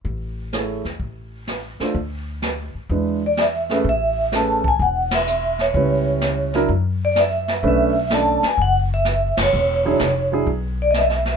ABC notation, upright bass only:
X:1
M:4/4
L:1/8
Q:"Swing" 1/4=127
K:A
V:1 name="Upright bass" clef=bass
A,,,3 E,, A,,,3 z | D,,3 z E,,4 | A,,,4 E,,,4 | C,,4 F,,4 |
B,,,3 z F,,,3 F,,, | E,,,2 =F,,,2 B,,,4 |]